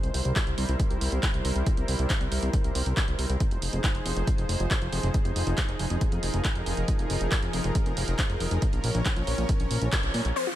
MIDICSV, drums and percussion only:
0, 0, Header, 1, 2, 480
1, 0, Start_track
1, 0, Key_signature, -4, "minor"
1, 0, Tempo, 434783
1, 1838, Time_signature, 4, 2, 24, 8
1, 11651, End_track
2, 0, Start_track
2, 0, Title_t, "Drums"
2, 38, Note_on_c, 9, 42, 35
2, 148, Note_off_c, 9, 42, 0
2, 158, Note_on_c, 9, 46, 103
2, 268, Note_off_c, 9, 46, 0
2, 278, Note_on_c, 9, 42, 48
2, 388, Note_off_c, 9, 42, 0
2, 397, Note_on_c, 9, 36, 123
2, 398, Note_on_c, 9, 39, 117
2, 398, Note_on_c, 9, 42, 73
2, 508, Note_off_c, 9, 36, 0
2, 508, Note_off_c, 9, 39, 0
2, 508, Note_off_c, 9, 42, 0
2, 518, Note_on_c, 9, 42, 35
2, 628, Note_off_c, 9, 42, 0
2, 638, Note_on_c, 9, 46, 108
2, 748, Note_off_c, 9, 46, 0
2, 759, Note_on_c, 9, 42, 50
2, 869, Note_off_c, 9, 42, 0
2, 877, Note_on_c, 9, 36, 122
2, 879, Note_on_c, 9, 42, 74
2, 988, Note_off_c, 9, 36, 0
2, 989, Note_off_c, 9, 42, 0
2, 999, Note_on_c, 9, 42, 36
2, 1109, Note_off_c, 9, 42, 0
2, 1119, Note_on_c, 9, 46, 106
2, 1229, Note_off_c, 9, 46, 0
2, 1239, Note_on_c, 9, 42, 47
2, 1350, Note_off_c, 9, 42, 0
2, 1357, Note_on_c, 9, 36, 120
2, 1358, Note_on_c, 9, 39, 122
2, 1358, Note_on_c, 9, 42, 77
2, 1468, Note_off_c, 9, 36, 0
2, 1469, Note_off_c, 9, 39, 0
2, 1469, Note_off_c, 9, 42, 0
2, 1479, Note_on_c, 9, 42, 35
2, 1589, Note_off_c, 9, 42, 0
2, 1599, Note_on_c, 9, 46, 108
2, 1709, Note_off_c, 9, 46, 0
2, 1719, Note_on_c, 9, 42, 49
2, 1829, Note_off_c, 9, 42, 0
2, 1837, Note_on_c, 9, 36, 116
2, 1838, Note_on_c, 9, 42, 72
2, 1948, Note_off_c, 9, 36, 0
2, 1948, Note_off_c, 9, 42, 0
2, 1958, Note_on_c, 9, 42, 34
2, 2068, Note_off_c, 9, 42, 0
2, 2078, Note_on_c, 9, 46, 100
2, 2189, Note_off_c, 9, 46, 0
2, 2198, Note_on_c, 9, 42, 48
2, 2308, Note_off_c, 9, 42, 0
2, 2318, Note_on_c, 9, 36, 123
2, 2318, Note_on_c, 9, 39, 111
2, 2318, Note_on_c, 9, 42, 73
2, 2428, Note_off_c, 9, 36, 0
2, 2428, Note_off_c, 9, 39, 0
2, 2428, Note_off_c, 9, 42, 0
2, 2438, Note_on_c, 9, 42, 35
2, 2548, Note_off_c, 9, 42, 0
2, 2558, Note_on_c, 9, 46, 110
2, 2668, Note_off_c, 9, 46, 0
2, 2678, Note_on_c, 9, 42, 47
2, 2789, Note_off_c, 9, 42, 0
2, 2798, Note_on_c, 9, 36, 118
2, 2798, Note_on_c, 9, 42, 72
2, 2908, Note_off_c, 9, 36, 0
2, 2909, Note_off_c, 9, 42, 0
2, 2919, Note_on_c, 9, 42, 35
2, 3029, Note_off_c, 9, 42, 0
2, 3038, Note_on_c, 9, 46, 109
2, 3148, Note_off_c, 9, 46, 0
2, 3159, Note_on_c, 9, 42, 48
2, 3270, Note_off_c, 9, 42, 0
2, 3278, Note_on_c, 9, 36, 117
2, 3279, Note_on_c, 9, 39, 110
2, 3279, Note_on_c, 9, 42, 73
2, 3388, Note_off_c, 9, 36, 0
2, 3390, Note_off_c, 9, 39, 0
2, 3390, Note_off_c, 9, 42, 0
2, 3400, Note_on_c, 9, 42, 34
2, 3510, Note_off_c, 9, 42, 0
2, 3519, Note_on_c, 9, 46, 107
2, 3629, Note_off_c, 9, 46, 0
2, 3639, Note_on_c, 9, 42, 49
2, 3749, Note_off_c, 9, 42, 0
2, 3758, Note_on_c, 9, 36, 110
2, 3758, Note_on_c, 9, 42, 72
2, 3868, Note_off_c, 9, 36, 0
2, 3868, Note_off_c, 9, 42, 0
2, 3878, Note_on_c, 9, 42, 34
2, 3989, Note_off_c, 9, 42, 0
2, 3998, Note_on_c, 9, 46, 97
2, 4109, Note_off_c, 9, 46, 0
2, 4118, Note_on_c, 9, 42, 48
2, 4228, Note_off_c, 9, 42, 0
2, 4238, Note_on_c, 9, 36, 113
2, 4238, Note_on_c, 9, 39, 108
2, 4238, Note_on_c, 9, 42, 73
2, 4348, Note_off_c, 9, 36, 0
2, 4349, Note_off_c, 9, 39, 0
2, 4349, Note_off_c, 9, 42, 0
2, 4358, Note_on_c, 9, 42, 35
2, 4468, Note_off_c, 9, 42, 0
2, 4478, Note_on_c, 9, 46, 108
2, 4589, Note_off_c, 9, 46, 0
2, 4599, Note_on_c, 9, 42, 49
2, 4709, Note_off_c, 9, 42, 0
2, 4717, Note_on_c, 9, 36, 114
2, 4719, Note_on_c, 9, 42, 74
2, 4828, Note_off_c, 9, 36, 0
2, 4830, Note_off_c, 9, 42, 0
2, 4839, Note_on_c, 9, 42, 36
2, 4949, Note_off_c, 9, 42, 0
2, 4959, Note_on_c, 9, 46, 102
2, 5069, Note_off_c, 9, 46, 0
2, 5078, Note_on_c, 9, 42, 49
2, 5189, Note_off_c, 9, 42, 0
2, 5197, Note_on_c, 9, 36, 115
2, 5198, Note_on_c, 9, 39, 110
2, 5198, Note_on_c, 9, 42, 76
2, 5308, Note_off_c, 9, 36, 0
2, 5308, Note_off_c, 9, 39, 0
2, 5308, Note_off_c, 9, 42, 0
2, 5317, Note_on_c, 9, 42, 35
2, 5428, Note_off_c, 9, 42, 0
2, 5438, Note_on_c, 9, 46, 105
2, 5548, Note_off_c, 9, 46, 0
2, 5557, Note_on_c, 9, 42, 50
2, 5668, Note_off_c, 9, 42, 0
2, 5677, Note_on_c, 9, 36, 114
2, 5677, Note_on_c, 9, 42, 76
2, 5787, Note_off_c, 9, 42, 0
2, 5788, Note_off_c, 9, 36, 0
2, 5797, Note_on_c, 9, 42, 37
2, 5907, Note_off_c, 9, 42, 0
2, 5917, Note_on_c, 9, 46, 94
2, 6027, Note_off_c, 9, 46, 0
2, 6037, Note_on_c, 9, 42, 49
2, 6148, Note_off_c, 9, 42, 0
2, 6157, Note_on_c, 9, 36, 114
2, 6157, Note_on_c, 9, 39, 109
2, 6157, Note_on_c, 9, 42, 77
2, 6267, Note_off_c, 9, 39, 0
2, 6267, Note_off_c, 9, 42, 0
2, 6268, Note_off_c, 9, 36, 0
2, 6277, Note_on_c, 9, 42, 37
2, 6388, Note_off_c, 9, 42, 0
2, 6397, Note_on_c, 9, 46, 99
2, 6507, Note_off_c, 9, 46, 0
2, 6517, Note_on_c, 9, 42, 50
2, 6627, Note_off_c, 9, 42, 0
2, 6637, Note_on_c, 9, 36, 107
2, 6637, Note_on_c, 9, 42, 77
2, 6747, Note_off_c, 9, 42, 0
2, 6748, Note_off_c, 9, 36, 0
2, 6757, Note_on_c, 9, 42, 37
2, 6867, Note_off_c, 9, 42, 0
2, 6876, Note_on_c, 9, 46, 100
2, 6987, Note_off_c, 9, 46, 0
2, 6996, Note_on_c, 9, 42, 50
2, 7107, Note_off_c, 9, 42, 0
2, 7116, Note_on_c, 9, 39, 114
2, 7116, Note_on_c, 9, 42, 77
2, 7117, Note_on_c, 9, 36, 115
2, 7227, Note_off_c, 9, 39, 0
2, 7227, Note_off_c, 9, 42, 0
2, 7228, Note_off_c, 9, 36, 0
2, 7236, Note_on_c, 9, 42, 35
2, 7347, Note_off_c, 9, 42, 0
2, 7357, Note_on_c, 9, 46, 101
2, 7467, Note_off_c, 9, 46, 0
2, 7477, Note_on_c, 9, 42, 52
2, 7587, Note_off_c, 9, 42, 0
2, 7597, Note_on_c, 9, 36, 107
2, 7597, Note_on_c, 9, 42, 81
2, 7707, Note_off_c, 9, 42, 0
2, 7708, Note_off_c, 9, 36, 0
2, 7718, Note_on_c, 9, 42, 37
2, 7828, Note_off_c, 9, 42, 0
2, 7837, Note_on_c, 9, 46, 93
2, 7948, Note_off_c, 9, 46, 0
2, 7958, Note_on_c, 9, 42, 53
2, 8068, Note_off_c, 9, 42, 0
2, 8077, Note_on_c, 9, 36, 110
2, 8077, Note_on_c, 9, 39, 114
2, 8077, Note_on_c, 9, 42, 79
2, 8187, Note_off_c, 9, 39, 0
2, 8187, Note_off_c, 9, 42, 0
2, 8188, Note_off_c, 9, 36, 0
2, 8197, Note_on_c, 9, 42, 37
2, 8308, Note_off_c, 9, 42, 0
2, 8317, Note_on_c, 9, 46, 103
2, 8428, Note_off_c, 9, 46, 0
2, 8437, Note_on_c, 9, 42, 51
2, 8548, Note_off_c, 9, 42, 0
2, 8557, Note_on_c, 9, 42, 83
2, 8558, Note_on_c, 9, 36, 111
2, 8667, Note_off_c, 9, 42, 0
2, 8668, Note_off_c, 9, 36, 0
2, 8678, Note_on_c, 9, 42, 37
2, 8788, Note_off_c, 9, 42, 0
2, 8798, Note_on_c, 9, 46, 98
2, 8908, Note_off_c, 9, 46, 0
2, 8918, Note_on_c, 9, 42, 52
2, 9029, Note_off_c, 9, 42, 0
2, 9038, Note_on_c, 9, 36, 112
2, 9039, Note_on_c, 9, 39, 112
2, 9039, Note_on_c, 9, 42, 78
2, 9148, Note_off_c, 9, 36, 0
2, 9149, Note_off_c, 9, 39, 0
2, 9149, Note_off_c, 9, 42, 0
2, 9159, Note_on_c, 9, 42, 36
2, 9270, Note_off_c, 9, 42, 0
2, 9278, Note_on_c, 9, 46, 98
2, 9388, Note_off_c, 9, 46, 0
2, 9397, Note_on_c, 9, 42, 54
2, 9508, Note_off_c, 9, 42, 0
2, 9517, Note_on_c, 9, 42, 82
2, 9518, Note_on_c, 9, 36, 113
2, 9627, Note_off_c, 9, 42, 0
2, 9628, Note_off_c, 9, 36, 0
2, 9637, Note_on_c, 9, 42, 37
2, 9748, Note_off_c, 9, 42, 0
2, 9756, Note_on_c, 9, 46, 95
2, 9867, Note_off_c, 9, 46, 0
2, 9878, Note_on_c, 9, 42, 52
2, 9988, Note_off_c, 9, 42, 0
2, 9997, Note_on_c, 9, 39, 119
2, 9997, Note_on_c, 9, 42, 80
2, 9998, Note_on_c, 9, 36, 115
2, 10108, Note_off_c, 9, 36, 0
2, 10108, Note_off_c, 9, 39, 0
2, 10108, Note_off_c, 9, 42, 0
2, 10117, Note_on_c, 9, 42, 38
2, 10227, Note_off_c, 9, 42, 0
2, 10236, Note_on_c, 9, 46, 105
2, 10347, Note_off_c, 9, 46, 0
2, 10357, Note_on_c, 9, 42, 54
2, 10468, Note_off_c, 9, 42, 0
2, 10477, Note_on_c, 9, 36, 115
2, 10477, Note_on_c, 9, 42, 81
2, 10587, Note_off_c, 9, 42, 0
2, 10588, Note_off_c, 9, 36, 0
2, 10596, Note_on_c, 9, 42, 39
2, 10707, Note_off_c, 9, 42, 0
2, 10716, Note_on_c, 9, 46, 103
2, 10827, Note_off_c, 9, 46, 0
2, 10837, Note_on_c, 9, 42, 53
2, 10947, Note_off_c, 9, 42, 0
2, 10957, Note_on_c, 9, 36, 116
2, 10957, Note_on_c, 9, 39, 123
2, 10957, Note_on_c, 9, 42, 81
2, 11067, Note_off_c, 9, 36, 0
2, 11067, Note_off_c, 9, 39, 0
2, 11067, Note_off_c, 9, 42, 0
2, 11076, Note_on_c, 9, 42, 37
2, 11187, Note_off_c, 9, 42, 0
2, 11196, Note_on_c, 9, 46, 98
2, 11306, Note_off_c, 9, 46, 0
2, 11316, Note_on_c, 9, 42, 55
2, 11427, Note_off_c, 9, 42, 0
2, 11437, Note_on_c, 9, 49, 78
2, 11547, Note_off_c, 9, 49, 0
2, 11651, End_track
0, 0, End_of_file